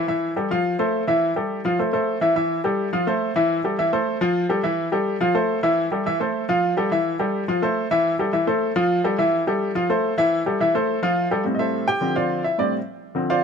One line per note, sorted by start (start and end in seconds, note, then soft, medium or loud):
0.08 0.31 E3 medium
0.08 0.31 E4 medium
0.08 0.31 E5 medium
0.36 0.48 G3 medium
0.36 0.48 G4 medium
0.36 0.48 A4 medium
0.51 0.74 F3 medium
0.51 0.74 F4 medium
0.51 0.74 F5 medium
0.79 1.02 A3 medium
0.79 1.02 A4 medium
0.79 1.02 C5 medium
1.07 1.31 E3 medium
1.07 1.31 E4 medium
1.07 1.31 E5 medium
1.36 1.59 G3 medium
1.36 1.59 G4 medium
1.36 1.60 A4 medium
1.65 1.76 F3 medium
1.65 1.77 F4 medium
1.65 1.77 F5 medium
1.79 1.90 A3 medium
1.79 1.91 A4 medium
1.79 1.91 C5 medium
1.93 2.16 A3 medium
1.93 2.16 A4 medium
1.93 2.16 C5 medium
2.21 2.33 E3 medium
2.21 2.33 E4 medium
2.21 2.33 E5 medium
2.36 2.59 E3 medium
2.36 2.59 E4 medium
2.36 2.59 E5 medium
2.64 2.87 G3 medium
2.64 2.88 G4 medium
2.64 2.88 A4 medium
2.93 3.04 F3 medium
2.93 3.04 F4 medium
2.93 3.05 F5 medium
3.07 3.30 A3 medium
3.07 3.30 A4 medium
3.07 3.30 C5 medium
3.36 3.59 E3 medium
3.36 3.59 E4 loud
3.36 3.59 E5 medium
3.64 3.76 G3 medium
3.64 3.76 G4 medium
3.64 3.76 A4 medium
3.78 3.90 E3 medium
3.78 3.90 E4 medium
3.78 3.90 E5 medium
3.93 4.16 A3 medium
3.93 4.16 A4 medium
3.93 4.16 C5 medium
4.21 4.44 F3 loud
4.21 4.44 F4 medium
4.21 4.44 F5 loud
4.49 4.61 G3 medium
4.49 4.61 G4 medium
4.49 4.61 A4 medium
4.63 4.87 E3 medium
4.63 4.87 E4 medium
4.63 4.87 E5 medium
4.92 5.15 G3 medium
4.92 5.15 G4 medium
4.92 5.15 A4 medium
5.21 5.32 F3 medium
5.21 5.32 F4 medium
5.21 5.32 F5 medium
5.35 5.58 A3 medium
5.35 5.58 A4 medium
5.35 5.58 C5 medium
5.63 5.86 E3 medium
5.63 5.86 E4 loud
5.63 5.86 E5 medium
5.91 6.03 G3 medium
5.91 6.03 G4 medium
5.91 6.03 A4 medium
6.06 6.17 E3 medium
6.06 6.18 E4 medium
6.06 6.18 E5 medium
6.20 6.43 A3 medium
6.20 6.44 A4 medium
6.20 6.44 C5 medium
6.49 6.72 F3 medium
6.49 6.72 F4 loud
6.49 6.72 F5 medium
6.77 6.88 G3 medium
6.77 6.89 G4 medium
6.77 6.89 A4 medium
6.91 7.14 E3 medium
6.91 7.15 E4 medium
6.91 7.15 E5 medium
7.19 7.43 G3 medium
7.19 7.43 G4 medium
7.19 7.43 A4 medium
7.48 7.60 F3 medium
7.48 7.60 F4 medium
7.48 7.60 F5 medium
7.62 7.85 A3 medium
7.62 7.86 A4 medium
7.62 7.86 C5 medium
7.91 8.14 E3 medium
7.91 8.14 E4 loud
7.91 8.14 E5 loud
8.19 8.31 G3 medium
8.19 8.31 G4 medium
8.19 8.31 A4 medium
8.33 8.45 E3 medium
8.33 8.45 E4 medium
8.33 8.45 E5 medium
8.47 8.70 A3 medium
8.47 8.71 A4 medium
8.47 8.71 C5 medium
8.76 8.99 F3 loud
8.76 8.99 F4 loud
8.76 8.99 F5 medium
9.04 9.16 G3 medium
9.04 9.16 G4 medium
9.04 9.16 A4 medium
9.18 9.42 E3 medium
9.18 9.42 E4 medium
9.18 9.42 E5 medium
9.47 9.70 G3 medium
9.47 9.70 G4 medium
9.47 9.70 A4 medium
9.75 9.87 F3 medium
9.75 9.87 F4 medium
9.75 9.87 F5 medium
9.89 10.13 A3 medium
9.89 10.13 A4 medium
9.89 10.13 C5 medium
10.18 10.41 E3 medium
10.18 10.41 E4 loud
10.18 10.41 E5 loud
10.46 10.58 G3 medium
10.46 10.58 G4 medium
10.46 10.58 A4 medium
10.60 10.72 E3 medium
10.60 10.72 E4 medium
10.60 10.72 E5 medium
10.74 10.98 A3 medium
10.74 10.98 A4 medium
10.74 10.98 C5 medium
11.03 11.26 F3 loud
11.03 11.26 F4 loud
11.03 11.26 F5 medium
11.31 11.43 G3 medium
11.31 11.43 G4 medium
11.31 11.43 A4 medium
11.45 11.85 A2 medium
11.45 11.86 G3 medium
11.45 11.86 C4 medium
11.55 11.57 D#5 medium
11.59 11.86 E4 medium
11.59 11.86 A4 medium
11.59 11.86 C5 medium
11.59 11.86 E5 medium
11.88 12.14 G4 medium
11.88 12.14 G5 loud
12.01 12.42 D3 medium
12.01 12.42 F3 medium
12.01 12.43 C4 medium
12.16 12.43 F4 medium
12.16 12.43 C5 medium
12.16 12.43 D5 medium
12.16 12.42 F5 medium
12.44 12.58 E4 medium
12.44 12.58 E5 medium
12.58 12.77 A2 medium
12.58 12.78 G3 medium
12.58 12.78 C4 medium
12.58 12.73 D4 medium
12.58 12.73 D5 medium
13.15 13.44 D3 medium
13.15 13.44 F3 medium
13.15 13.44 C4 medium
13.30 13.44 F4 medium
13.30 13.44 C5 medium
13.30 13.44 D5 medium
13.30 13.44 F5 loud